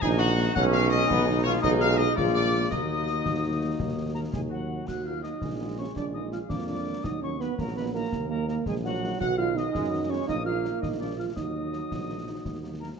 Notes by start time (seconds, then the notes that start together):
0.02 A#1 D#4 G#5, concert bass drum, snare
0.18 A#3 D#4 F#4 F#5
0.39 A#3 D#4 F#4
0.54 B1 G#3 C#4 D#4 G#4 F#5 F#6, concert bass drum, snare, crash
0.72 F5 F6
0.89 D#5 D#6, snare
1.09 B1 B3, concert bass drum, snare
1.27 D#4
1.43 F4 C#5 C#6
1.62 B1 G#3 D#4 F4 G#4 D#5 D#6, concert bass drum, snare
1.80 F5 F6
1.97 D#5 D#6, snare
2.15 A#3 F4 G#4 D5 D6, concert bass drum, snare
2.19 A#1
2.34 D5 D6
2.70 D#2 A#3 D#4 F#4 D#5 D#6, concert bass drum, snare, crash
3.07 snare
3.25 D#2, concert bass drum, snare
3.79 D#2, concert bass drum, snare
4.14 A#3 A#4 A#5
4.31 D#2 G#3 G#4, concert bass drum, snare
4.35 G#5
4.49 F#3 F#4 F#5
4.85 D#2 F#3 F#4 F#5 F#6, concert bass drum, snare, crash
5.04 A#3 F4 F#4 F5 F6
5.22 A#3 D#4 D#5 D#6, snare
5.26 F#4
5.41 A#1 G#3, concert bass drum, snare
5.60 A#3 F#4
5.76 A#3 C#4 F#4 C#5 C#6
5.96 A#1 D4 D5 D6, concert bass drum, snare
6.13 G#3 A#3 D#4 F4 D#5 D#6
6.31 G#3 A#3 F4 F5 F6, snare
6.49 F2 A#3 D4 D5 D6, concert bass drum, snare
6.67 G#3 A#3 D4 F4 D5 D6
6.87 G#3 A#3 F4
7.03 D#2 F#3 D#4 D#5 D#6, concert bass drum, snare
7.20 F#3 A#3 C#4 D#4 C#5 C#6
7.40 F#3 A#3 B3 D#4 B4 B5, snare
7.58 A#1 F#3 A#3 A#4 A#5, concert bass drum, snare
7.76 F#3 A#3 B3 D#4 B4 B5
7.93 F#3 A#3 D#4 A#4 A#5
8.11 D#2 D#3, concert bass drum, snare
8.29 F#3 A#3 D#4 A#4 A#5
8.48 F#3 A#3 D#4 A#4 A#5, snare
8.66 A#1 F3 G#3 G#4 G#5, concert bass drum, snare
8.84 F#3 A#3 D#4 F#4 F#5
9.04 F#3 A#3 D#4
9.20 B1 D#3 F#4 F#5 F#6, concert bass drum, snare, crash
9.37 F#3 B3 D#4 F4 F5 F6
9.56 F#3 B3 D#4 D#5 D#6, snare
9.72 F#2 G#3, concert bass drum, snare
9.90 F#3 B3 D#4
10.08 F#3 G#3 B3 C#4 D#4 C#5 C#6
10.27 A#1 A#3 D#4 D#5 D#6, concert bass drum, snare
10.45 F#3 A#3 D#4 F4 F5 F6
10.64 F#3 A#3 D#4, snare
10.81 A#1 D#4 D#5 D#6, concert bass drum, snare
10.99 F3 A#3 D4 F4 D5 D6
11.17 F3 A#3 F4 F5 F6
11.35 D#2 F#3 D#4 D#5 D#6, concert bass drum, snare
11.55 F#3 A#3 D#4
11.73 F#3 A#3 D#4, snare
11.91 A#1, concert bass drum, snare
12.09 F#3 A#3 D#4
12.28 F#3 A#3 D#4
12.45 D#2, concert bass drum, snare
12.63 F#3 A#3 D#4
12.80 F#3 A#3 D#4 A#4 A#5